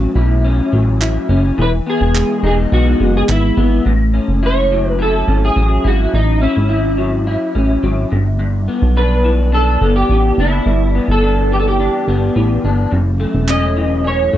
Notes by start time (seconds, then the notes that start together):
Already playing: A2 F#3 C#4
0.15 B1 E4
0.44 C#4
0.73 A1 F#3
1.01 E4, clap
1.29 F#1 C#4
1.58 E1 E3 B4
1.86 B3 G#4
2.01 E1
2.14 G#3, clap
2.43 E1 D#4 G#4
2.72 B1 B3 F#4
3.00 F#1 G#3
3.17 G#4
3.29 G#1 E4, clap
3.57 G#1 B3
3.86 A1 A2
4.14 C#4
4.28 F#1
4.43 E4 C#5
4.72 F#3
4.90 B4
4.99 E4 A4
5.28 G#1 C#4
5.45 G#4
5.56 A1 F#3
5.84 G#1 E4 F#4
6.14 A1 D#4
6.41 C#4 E4
6.57 G#1
6.69 E4
6.98 F#3
7.27 E4
7.55 A1 C#4
7.83 G#1 F#3
8.12 G1 G2
8.39 G2
8.68 B3
8.82 B1
8.97 D4 B4
9.24 E3
9.52 D4 A4
9.81 G1 B3
9.96 G4
10.10 A1 E3
10.38 F#1 D4 E4
10.66 G1 G2
10.95 B3
11.08 G1 A4
11.23 D4
11.52 E3 G4
11.60 A4
11.68 G4
11.80 D4
12.08 G1 B3
12.36 A1 E3
12.64 G1 D4
12.91 F#1 F#2
13.20 A3
13.34 E1
13.48 C#4 D#5, clap
13.77 E3
14.04 C#4 C#5
14.33 F#1 A3